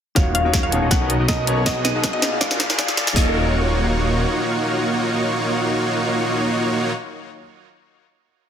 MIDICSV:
0, 0, Header, 1, 8, 480
1, 0, Start_track
1, 0, Key_signature, -6, "minor"
1, 0, Tempo, 375000
1, 205, Time_signature, 4, 2, 24, 8
1, 10875, End_track
2, 0, Start_track
2, 0, Title_t, "Synth pluck"
2, 0, Program_c, 0, 84
2, 206, Note_on_c, 0, 77, 90
2, 369, Note_off_c, 0, 77, 0
2, 446, Note_on_c, 0, 77, 94
2, 685, Note_off_c, 0, 77, 0
2, 808, Note_on_c, 0, 77, 95
2, 1048, Note_off_c, 0, 77, 0
2, 1162, Note_on_c, 0, 78, 89
2, 1486, Note_off_c, 0, 78, 0
2, 1644, Note_on_c, 0, 75, 94
2, 1967, Note_off_c, 0, 75, 0
2, 2125, Note_on_c, 0, 75, 102
2, 2288, Note_off_c, 0, 75, 0
2, 2363, Note_on_c, 0, 75, 99
2, 2603, Note_off_c, 0, 75, 0
2, 2728, Note_on_c, 0, 75, 96
2, 2969, Note_off_c, 0, 75, 0
2, 3081, Note_on_c, 0, 74, 92
2, 3406, Note_off_c, 0, 74, 0
2, 3563, Note_on_c, 0, 74, 96
2, 3887, Note_off_c, 0, 74, 0
2, 4047, Note_on_c, 0, 75, 93
2, 9470, Note_off_c, 0, 75, 0
2, 10875, End_track
3, 0, Start_track
3, 0, Title_t, "Supersaw synth"
3, 0, Program_c, 1, 81
3, 205, Note_on_c, 1, 65, 83
3, 205, Note_on_c, 1, 73, 103
3, 206, Note_on_c, 1, 58, 88
3, 206, Note_on_c, 1, 63, 83
3, 206, Note_on_c, 1, 66, 83
3, 541, Note_off_c, 1, 58, 0
3, 541, Note_off_c, 1, 63, 0
3, 541, Note_off_c, 1, 65, 0
3, 541, Note_off_c, 1, 66, 0
3, 541, Note_off_c, 1, 73, 0
3, 571, Note_on_c, 1, 58, 84
3, 571, Note_on_c, 1, 63, 79
3, 571, Note_on_c, 1, 65, 77
3, 572, Note_on_c, 1, 66, 77
3, 572, Note_on_c, 1, 75, 93
3, 781, Note_off_c, 1, 58, 0
3, 781, Note_off_c, 1, 63, 0
3, 781, Note_off_c, 1, 65, 0
3, 781, Note_off_c, 1, 66, 0
3, 781, Note_off_c, 1, 75, 0
3, 810, Note_on_c, 1, 58, 99
3, 810, Note_on_c, 1, 73, 104
3, 811, Note_on_c, 1, 63, 85
3, 811, Note_on_c, 1, 65, 90
3, 811, Note_on_c, 1, 66, 89
3, 1020, Note_off_c, 1, 58, 0
3, 1020, Note_off_c, 1, 73, 0
3, 1021, Note_off_c, 1, 63, 0
3, 1021, Note_off_c, 1, 65, 0
3, 1021, Note_off_c, 1, 66, 0
3, 1050, Note_on_c, 1, 75, 78
3, 1051, Note_on_c, 1, 58, 74
3, 1051, Note_on_c, 1, 63, 64
3, 1052, Note_on_c, 1, 65, 69
3, 1052, Note_on_c, 1, 66, 68
3, 1138, Note_off_c, 1, 58, 0
3, 1138, Note_off_c, 1, 63, 0
3, 1138, Note_off_c, 1, 65, 0
3, 1138, Note_off_c, 1, 66, 0
3, 1138, Note_off_c, 1, 75, 0
3, 1164, Note_on_c, 1, 70, 77
3, 1165, Note_on_c, 1, 59, 82
3, 1165, Note_on_c, 1, 63, 75
3, 1165, Note_on_c, 1, 66, 76
3, 1165, Note_on_c, 1, 73, 88
3, 1272, Note_off_c, 1, 59, 0
3, 1272, Note_off_c, 1, 63, 0
3, 1272, Note_off_c, 1, 66, 0
3, 1272, Note_off_c, 1, 70, 0
3, 1272, Note_off_c, 1, 73, 0
3, 1291, Note_on_c, 1, 59, 93
3, 1291, Note_on_c, 1, 63, 88
3, 1291, Note_on_c, 1, 66, 84
3, 1291, Note_on_c, 1, 70, 87
3, 1291, Note_on_c, 1, 75, 102
3, 1501, Note_off_c, 1, 59, 0
3, 1501, Note_off_c, 1, 63, 0
3, 1501, Note_off_c, 1, 66, 0
3, 1501, Note_off_c, 1, 70, 0
3, 1501, Note_off_c, 1, 75, 0
3, 1530, Note_on_c, 1, 59, 75
3, 1530, Note_on_c, 1, 63, 72
3, 1530, Note_on_c, 1, 66, 73
3, 1530, Note_on_c, 1, 70, 74
3, 1530, Note_on_c, 1, 75, 89
3, 1617, Note_off_c, 1, 59, 0
3, 1617, Note_off_c, 1, 66, 0
3, 1617, Note_off_c, 1, 70, 0
3, 1617, Note_off_c, 1, 75, 0
3, 1618, Note_off_c, 1, 63, 0
3, 1645, Note_on_c, 1, 66, 82
3, 1645, Note_on_c, 1, 70, 80
3, 1646, Note_on_c, 1, 59, 91
3, 1858, Note_off_c, 1, 59, 0
3, 1858, Note_off_c, 1, 66, 0
3, 1858, Note_off_c, 1, 70, 0
3, 1885, Note_on_c, 1, 59, 82
3, 1885, Note_on_c, 1, 70, 75
3, 1885, Note_on_c, 1, 73, 91
3, 1886, Note_on_c, 1, 63, 76
3, 1886, Note_on_c, 1, 66, 76
3, 2098, Note_off_c, 1, 59, 0
3, 2098, Note_off_c, 1, 63, 0
3, 2098, Note_off_c, 1, 66, 0
3, 2098, Note_off_c, 1, 70, 0
3, 2098, Note_off_c, 1, 73, 0
3, 2125, Note_on_c, 1, 63, 82
3, 2125, Note_on_c, 1, 66, 82
3, 2125, Note_on_c, 1, 75, 99
3, 2126, Note_on_c, 1, 68, 83
3, 2461, Note_off_c, 1, 63, 0
3, 2461, Note_off_c, 1, 66, 0
3, 2461, Note_off_c, 1, 68, 0
3, 2461, Note_off_c, 1, 75, 0
3, 2491, Note_on_c, 1, 59, 83
3, 2491, Note_on_c, 1, 63, 78
3, 2491, Note_on_c, 1, 66, 79
3, 2491, Note_on_c, 1, 68, 81
3, 2491, Note_on_c, 1, 77, 95
3, 2701, Note_off_c, 1, 59, 0
3, 2701, Note_off_c, 1, 63, 0
3, 2701, Note_off_c, 1, 66, 0
3, 2701, Note_off_c, 1, 68, 0
3, 2701, Note_off_c, 1, 77, 0
3, 2730, Note_on_c, 1, 66, 86
3, 2730, Note_on_c, 1, 68, 91
3, 2731, Note_on_c, 1, 59, 95
3, 2731, Note_on_c, 1, 63, 89
3, 2731, Note_on_c, 1, 75, 101
3, 2941, Note_off_c, 1, 59, 0
3, 2941, Note_off_c, 1, 63, 0
3, 2941, Note_off_c, 1, 66, 0
3, 2941, Note_off_c, 1, 68, 0
3, 2941, Note_off_c, 1, 75, 0
3, 2970, Note_on_c, 1, 59, 78
3, 2970, Note_on_c, 1, 63, 71
3, 2970, Note_on_c, 1, 66, 67
3, 2971, Note_on_c, 1, 68, 67
3, 2971, Note_on_c, 1, 77, 83
3, 3058, Note_off_c, 1, 59, 0
3, 3058, Note_off_c, 1, 63, 0
3, 3058, Note_off_c, 1, 66, 0
3, 3058, Note_off_c, 1, 68, 0
3, 3058, Note_off_c, 1, 77, 0
3, 3084, Note_on_c, 1, 58, 83
3, 3084, Note_on_c, 1, 62, 74
3, 3085, Note_on_c, 1, 70, 88
3, 3192, Note_off_c, 1, 58, 0
3, 3192, Note_off_c, 1, 62, 0
3, 3192, Note_off_c, 1, 70, 0
3, 3210, Note_on_c, 1, 58, 93
3, 3210, Note_on_c, 1, 65, 87
3, 3210, Note_on_c, 1, 68, 85
3, 3211, Note_on_c, 1, 62, 87
3, 3211, Note_on_c, 1, 77, 101
3, 3420, Note_off_c, 1, 68, 0
3, 3421, Note_off_c, 1, 58, 0
3, 3421, Note_off_c, 1, 62, 0
3, 3421, Note_off_c, 1, 65, 0
3, 3421, Note_off_c, 1, 77, 0
3, 3449, Note_on_c, 1, 58, 78
3, 3450, Note_on_c, 1, 62, 77
3, 3450, Note_on_c, 1, 65, 76
3, 3450, Note_on_c, 1, 68, 70
3, 3450, Note_on_c, 1, 77, 92
3, 3537, Note_off_c, 1, 58, 0
3, 3537, Note_off_c, 1, 65, 0
3, 3537, Note_off_c, 1, 68, 0
3, 3537, Note_off_c, 1, 77, 0
3, 3538, Note_off_c, 1, 62, 0
3, 3564, Note_on_c, 1, 58, 91
3, 3564, Note_on_c, 1, 68, 85
3, 3777, Note_off_c, 1, 58, 0
3, 3777, Note_off_c, 1, 68, 0
3, 3805, Note_on_c, 1, 62, 81
3, 3805, Note_on_c, 1, 65, 82
3, 3805, Note_on_c, 1, 68, 78
3, 3806, Note_on_c, 1, 58, 86
3, 3806, Note_on_c, 1, 74, 95
3, 4018, Note_off_c, 1, 58, 0
3, 4018, Note_off_c, 1, 62, 0
3, 4018, Note_off_c, 1, 65, 0
3, 4018, Note_off_c, 1, 68, 0
3, 4018, Note_off_c, 1, 74, 0
3, 4046, Note_on_c, 1, 58, 84
3, 4046, Note_on_c, 1, 63, 77
3, 4046, Note_on_c, 1, 65, 78
3, 4046, Note_on_c, 1, 66, 81
3, 4046, Note_on_c, 1, 73, 93
3, 8858, Note_off_c, 1, 58, 0
3, 8858, Note_off_c, 1, 63, 0
3, 8858, Note_off_c, 1, 65, 0
3, 8858, Note_off_c, 1, 66, 0
3, 8858, Note_off_c, 1, 73, 0
3, 10875, End_track
4, 0, Start_track
4, 0, Title_t, "Grand piano"
4, 0, Program_c, 2, 0
4, 192, Note_on_c, 2, 51, 96
4, 199, Note_on_c, 2, 58, 84
4, 205, Note_on_c, 2, 65, 84
4, 212, Note_on_c, 2, 66, 86
4, 218, Note_on_c, 2, 73, 101
4, 312, Note_off_c, 2, 51, 0
4, 315, Note_off_c, 2, 58, 0
4, 318, Note_off_c, 2, 65, 0
4, 321, Note_off_c, 2, 66, 0
4, 324, Note_off_c, 2, 73, 0
4, 561, Note_on_c, 2, 51, 90
4, 567, Note_on_c, 2, 58, 84
4, 573, Note_on_c, 2, 65, 80
4, 579, Note_on_c, 2, 66, 80
4, 586, Note_on_c, 2, 73, 97
4, 893, Note_off_c, 2, 51, 0
4, 896, Note_off_c, 2, 58, 0
4, 899, Note_off_c, 2, 65, 0
4, 902, Note_off_c, 2, 66, 0
4, 905, Note_off_c, 2, 73, 0
4, 914, Note_on_c, 2, 47, 96
4, 921, Note_on_c, 2, 59, 84
4, 927, Note_on_c, 2, 63, 84
4, 933, Note_on_c, 2, 70, 81
4, 939, Note_on_c, 2, 73, 99
4, 1255, Note_off_c, 2, 47, 0
4, 1259, Note_off_c, 2, 59, 0
4, 1262, Note_off_c, 2, 63, 0
4, 1265, Note_off_c, 2, 70, 0
4, 1268, Note_off_c, 2, 73, 0
4, 1281, Note_on_c, 2, 47, 80
4, 1286, Note_on_c, 2, 59, 77
4, 1293, Note_on_c, 2, 63, 83
4, 1300, Note_on_c, 2, 70, 79
4, 1306, Note_on_c, 2, 73, 94
4, 1388, Note_off_c, 2, 47, 0
4, 1391, Note_off_c, 2, 59, 0
4, 1394, Note_off_c, 2, 63, 0
4, 1398, Note_off_c, 2, 70, 0
4, 1401, Note_off_c, 2, 73, 0
4, 1635, Note_on_c, 2, 47, 94
4, 1641, Note_on_c, 2, 59, 88
4, 1647, Note_on_c, 2, 63, 90
4, 1653, Note_on_c, 2, 70, 89
4, 1660, Note_on_c, 2, 75, 104
4, 1815, Note_off_c, 2, 47, 0
4, 1818, Note_off_c, 2, 59, 0
4, 1822, Note_off_c, 2, 63, 0
4, 1825, Note_off_c, 2, 70, 0
4, 1828, Note_off_c, 2, 75, 0
4, 1875, Note_on_c, 2, 47, 96
4, 1881, Note_on_c, 2, 59, 93
4, 1888, Note_on_c, 2, 63, 89
4, 1894, Note_on_c, 2, 70, 91
4, 1901, Note_on_c, 2, 73, 112
4, 2056, Note_off_c, 2, 47, 0
4, 2059, Note_off_c, 2, 59, 0
4, 2062, Note_off_c, 2, 63, 0
4, 2065, Note_off_c, 2, 70, 0
4, 2068, Note_off_c, 2, 73, 0
4, 2115, Note_on_c, 2, 47, 95
4, 2122, Note_on_c, 2, 59, 90
4, 2128, Note_on_c, 2, 66, 90
4, 2134, Note_on_c, 2, 70, 90
4, 2141, Note_on_c, 2, 75, 108
4, 2233, Note_off_c, 2, 47, 0
4, 2236, Note_off_c, 2, 59, 0
4, 2239, Note_off_c, 2, 66, 0
4, 2242, Note_off_c, 2, 70, 0
4, 2246, Note_off_c, 2, 75, 0
4, 2482, Note_on_c, 2, 47, 94
4, 2488, Note_on_c, 2, 59, 83
4, 2495, Note_on_c, 2, 66, 83
4, 2502, Note_on_c, 2, 70, 87
4, 2507, Note_on_c, 2, 75, 100
4, 2813, Note_off_c, 2, 47, 0
4, 2816, Note_off_c, 2, 59, 0
4, 2820, Note_off_c, 2, 66, 0
4, 2823, Note_off_c, 2, 70, 0
4, 2826, Note_off_c, 2, 75, 0
4, 2833, Note_on_c, 2, 46, 90
4, 2840, Note_on_c, 2, 58, 87
4, 2846, Note_on_c, 2, 65, 87
4, 2852, Note_on_c, 2, 68, 85
4, 2859, Note_on_c, 2, 74, 104
4, 3175, Note_off_c, 2, 46, 0
4, 3178, Note_off_c, 2, 58, 0
4, 3181, Note_off_c, 2, 65, 0
4, 3184, Note_off_c, 2, 68, 0
4, 3188, Note_off_c, 2, 74, 0
4, 3199, Note_on_c, 2, 46, 85
4, 3205, Note_on_c, 2, 58, 79
4, 3213, Note_on_c, 2, 65, 83
4, 3218, Note_on_c, 2, 68, 80
4, 3225, Note_on_c, 2, 74, 96
4, 3307, Note_off_c, 2, 46, 0
4, 3310, Note_off_c, 2, 58, 0
4, 3314, Note_off_c, 2, 65, 0
4, 3317, Note_off_c, 2, 68, 0
4, 3320, Note_off_c, 2, 74, 0
4, 3552, Note_on_c, 2, 46, 95
4, 3559, Note_on_c, 2, 58, 94
4, 3565, Note_on_c, 2, 65, 88
4, 3572, Note_on_c, 2, 68, 92
4, 3578, Note_on_c, 2, 77, 111
4, 3734, Note_off_c, 2, 46, 0
4, 3738, Note_off_c, 2, 58, 0
4, 3740, Note_off_c, 2, 65, 0
4, 3744, Note_off_c, 2, 68, 0
4, 3747, Note_off_c, 2, 77, 0
4, 3794, Note_on_c, 2, 46, 101
4, 3800, Note_on_c, 2, 58, 96
4, 3807, Note_on_c, 2, 65, 94
4, 3812, Note_on_c, 2, 68, 90
4, 3819, Note_on_c, 2, 74, 111
4, 3975, Note_off_c, 2, 46, 0
4, 3978, Note_off_c, 2, 58, 0
4, 3981, Note_off_c, 2, 65, 0
4, 3984, Note_off_c, 2, 68, 0
4, 3988, Note_off_c, 2, 74, 0
4, 4009, Note_on_c, 2, 51, 87
4, 4028, Note_on_c, 2, 58, 78
4, 4048, Note_on_c, 2, 77, 79
4, 4067, Note_on_c, 2, 54, 81
4, 4086, Note_on_c, 2, 73, 98
4, 9433, Note_off_c, 2, 51, 0
4, 9451, Note_off_c, 2, 58, 0
4, 9472, Note_off_c, 2, 77, 0
4, 9490, Note_off_c, 2, 54, 0
4, 9509, Note_off_c, 2, 73, 0
4, 10875, End_track
5, 0, Start_track
5, 0, Title_t, "Synth arpeggio sound"
5, 0, Program_c, 3, 84
5, 206, Note_on_c, 3, 61, 101
5, 271, Note_off_c, 3, 61, 0
5, 333, Note_on_c, 3, 65, 76
5, 391, Note_off_c, 3, 65, 0
5, 447, Note_on_c, 3, 61, 76
5, 545, Note_off_c, 3, 61, 0
5, 574, Note_on_c, 3, 66, 79
5, 662, Note_off_c, 3, 66, 0
5, 688, Note_on_c, 3, 61, 86
5, 752, Note_off_c, 3, 61, 0
5, 813, Note_on_c, 3, 65, 76
5, 901, Note_off_c, 3, 65, 0
5, 927, Note_on_c, 3, 61, 105
5, 992, Note_off_c, 3, 61, 0
5, 1053, Note_on_c, 3, 65, 80
5, 1112, Note_off_c, 3, 65, 0
5, 1166, Note_on_c, 3, 61, 87
5, 1264, Note_off_c, 3, 61, 0
5, 1295, Note_on_c, 3, 70, 77
5, 1382, Note_off_c, 3, 70, 0
5, 1407, Note_on_c, 3, 61, 74
5, 1472, Note_off_c, 3, 61, 0
5, 1534, Note_on_c, 3, 66, 74
5, 1622, Note_off_c, 3, 66, 0
5, 1647, Note_on_c, 3, 61, 104
5, 1712, Note_off_c, 3, 61, 0
5, 1772, Note_on_c, 3, 66, 78
5, 1831, Note_off_c, 3, 66, 0
5, 1887, Note_on_c, 3, 61, 76
5, 1984, Note_off_c, 3, 61, 0
5, 2013, Note_on_c, 3, 70, 76
5, 2101, Note_off_c, 3, 70, 0
5, 2128, Note_on_c, 3, 63, 80
5, 2192, Note_off_c, 3, 63, 0
5, 2254, Note_on_c, 3, 68, 83
5, 2342, Note_off_c, 3, 68, 0
5, 2367, Note_on_c, 3, 63, 101
5, 2431, Note_off_c, 3, 63, 0
5, 2493, Note_on_c, 3, 68, 79
5, 2551, Note_off_c, 3, 68, 0
5, 2606, Note_on_c, 3, 63, 86
5, 2704, Note_off_c, 3, 63, 0
5, 2733, Note_on_c, 3, 71, 76
5, 2821, Note_off_c, 3, 71, 0
5, 2847, Note_on_c, 3, 63, 74
5, 2912, Note_off_c, 3, 63, 0
5, 2973, Note_on_c, 3, 68, 80
5, 3061, Note_off_c, 3, 68, 0
5, 3087, Note_on_c, 3, 62, 100
5, 3152, Note_off_c, 3, 62, 0
5, 3213, Note_on_c, 3, 68, 75
5, 3271, Note_off_c, 3, 68, 0
5, 3327, Note_on_c, 3, 62, 76
5, 3425, Note_off_c, 3, 62, 0
5, 3453, Note_on_c, 3, 70, 75
5, 3541, Note_off_c, 3, 70, 0
5, 3567, Note_on_c, 3, 62, 88
5, 3632, Note_off_c, 3, 62, 0
5, 3693, Note_on_c, 3, 68, 76
5, 3781, Note_off_c, 3, 68, 0
5, 3806, Note_on_c, 3, 62, 104
5, 3871, Note_off_c, 3, 62, 0
5, 3932, Note_on_c, 3, 68, 76
5, 3991, Note_off_c, 3, 68, 0
5, 4045, Note_on_c, 3, 61, 90
5, 4269, Note_off_c, 3, 61, 0
5, 10875, End_track
6, 0, Start_track
6, 0, Title_t, "Detuned saw bass"
6, 0, Program_c, 4, 39
6, 204, Note_on_c, 4, 27, 88
6, 546, Note_off_c, 4, 27, 0
6, 570, Note_on_c, 4, 27, 91
6, 786, Note_off_c, 4, 27, 0
6, 810, Note_on_c, 4, 27, 97
6, 1025, Note_off_c, 4, 27, 0
6, 1050, Note_on_c, 4, 27, 93
6, 1142, Note_off_c, 4, 27, 0
6, 1165, Note_on_c, 4, 35, 103
6, 1266, Note_off_c, 4, 35, 0
6, 1291, Note_on_c, 4, 35, 98
6, 1506, Note_off_c, 4, 35, 0
6, 1531, Note_on_c, 4, 35, 100
6, 1622, Note_off_c, 4, 35, 0
6, 1645, Note_on_c, 4, 35, 98
6, 1862, Note_off_c, 4, 35, 0
6, 1885, Note_on_c, 4, 35, 95
6, 2102, Note_off_c, 4, 35, 0
6, 2126, Note_on_c, 4, 35, 91
6, 2466, Note_off_c, 4, 35, 0
6, 2492, Note_on_c, 4, 35, 97
6, 2706, Note_off_c, 4, 35, 0
6, 2731, Note_on_c, 4, 35, 99
6, 2946, Note_off_c, 4, 35, 0
6, 2971, Note_on_c, 4, 35, 98
6, 3063, Note_off_c, 4, 35, 0
6, 3085, Note_on_c, 4, 34, 107
6, 3186, Note_off_c, 4, 34, 0
6, 3212, Note_on_c, 4, 34, 104
6, 3426, Note_off_c, 4, 34, 0
6, 3453, Note_on_c, 4, 34, 101
6, 3544, Note_off_c, 4, 34, 0
6, 3565, Note_on_c, 4, 34, 99
6, 3782, Note_off_c, 4, 34, 0
6, 3806, Note_on_c, 4, 34, 91
6, 4023, Note_off_c, 4, 34, 0
6, 4045, Note_on_c, 4, 27, 94
6, 5434, Note_off_c, 4, 27, 0
6, 10875, End_track
7, 0, Start_track
7, 0, Title_t, "Riser"
7, 0, Program_c, 5, 103
7, 204, Note_on_c, 5, 60, 75
7, 4045, Note_off_c, 5, 60, 0
7, 10875, End_track
8, 0, Start_track
8, 0, Title_t, "Drums"
8, 205, Note_on_c, 9, 36, 95
8, 205, Note_on_c, 9, 38, 48
8, 205, Note_on_c, 9, 42, 77
8, 333, Note_off_c, 9, 36, 0
8, 333, Note_off_c, 9, 38, 0
8, 333, Note_off_c, 9, 42, 0
8, 446, Note_on_c, 9, 42, 65
8, 574, Note_off_c, 9, 42, 0
8, 685, Note_on_c, 9, 36, 98
8, 685, Note_on_c, 9, 38, 54
8, 685, Note_on_c, 9, 42, 81
8, 813, Note_off_c, 9, 36, 0
8, 813, Note_off_c, 9, 38, 0
8, 813, Note_off_c, 9, 42, 0
8, 926, Note_on_c, 9, 42, 68
8, 1054, Note_off_c, 9, 42, 0
8, 1165, Note_on_c, 9, 36, 105
8, 1166, Note_on_c, 9, 38, 56
8, 1166, Note_on_c, 9, 42, 81
8, 1293, Note_off_c, 9, 36, 0
8, 1294, Note_off_c, 9, 38, 0
8, 1294, Note_off_c, 9, 42, 0
8, 1406, Note_on_c, 9, 42, 70
8, 1534, Note_off_c, 9, 42, 0
8, 1645, Note_on_c, 9, 36, 97
8, 1645, Note_on_c, 9, 38, 70
8, 1645, Note_on_c, 9, 42, 86
8, 1773, Note_off_c, 9, 36, 0
8, 1773, Note_off_c, 9, 38, 0
8, 1773, Note_off_c, 9, 42, 0
8, 1886, Note_on_c, 9, 42, 67
8, 2014, Note_off_c, 9, 42, 0
8, 2126, Note_on_c, 9, 36, 98
8, 2126, Note_on_c, 9, 38, 73
8, 2126, Note_on_c, 9, 42, 83
8, 2254, Note_off_c, 9, 36, 0
8, 2254, Note_off_c, 9, 38, 0
8, 2254, Note_off_c, 9, 42, 0
8, 2366, Note_on_c, 9, 38, 79
8, 2366, Note_on_c, 9, 42, 69
8, 2494, Note_off_c, 9, 38, 0
8, 2494, Note_off_c, 9, 42, 0
8, 2605, Note_on_c, 9, 36, 102
8, 2606, Note_on_c, 9, 38, 82
8, 2606, Note_on_c, 9, 42, 81
8, 2733, Note_off_c, 9, 36, 0
8, 2734, Note_off_c, 9, 38, 0
8, 2734, Note_off_c, 9, 42, 0
8, 2846, Note_on_c, 9, 38, 88
8, 2846, Note_on_c, 9, 42, 66
8, 2974, Note_off_c, 9, 38, 0
8, 2974, Note_off_c, 9, 42, 0
8, 3085, Note_on_c, 9, 36, 102
8, 3085, Note_on_c, 9, 38, 89
8, 3085, Note_on_c, 9, 42, 81
8, 3211, Note_off_c, 9, 38, 0
8, 3211, Note_on_c, 9, 38, 79
8, 3213, Note_off_c, 9, 36, 0
8, 3213, Note_off_c, 9, 42, 0
8, 3326, Note_off_c, 9, 38, 0
8, 3326, Note_on_c, 9, 38, 97
8, 3326, Note_on_c, 9, 42, 70
8, 3453, Note_off_c, 9, 38, 0
8, 3453, Note_on_c, 9, 38, 87
8, 3454, Note_off_c, 9, 42, 0
8, 3565, Note_on_c, 9, 36, 97
8, 3566, Note_off_c, 9, 38, 0
8, 3566, Note_on_c, 9, 38, 110
8, 3566, Note_on_c, 9, 42, 85
8, 3692, Note_off_c, 9, 38, 0
8, 3692, Note_on_c, 9, 38, 90
8, 3693, Note_off_c, 9, 36, 0
8, 3694, Note_off_c, 9, 42, 0
8, 3807, Note_off_c, 9, 38, 0
8, 3807, Note_on_c, 9, 38, 106
8, 3807, Note_on_c, 9, 42, 66
8, 3933, Note_off_c, 9, 38, 0
8, 3933, Note_on_c, 9, 38, 97
8, 3935, Note_off_c, 9, 42, 0
8, 4045, Note_off_c, 9, 38, 0
8, 4045, Note_on_c, 9, 36, 109
8, 4045, Note_on_c, 9, 38, 105
8, 4173, Note_off_c, 9, 36, 0
8, 4173, Note_off_c, 9, 38, 0
8, 10875, End_track
0, 0, End_of_file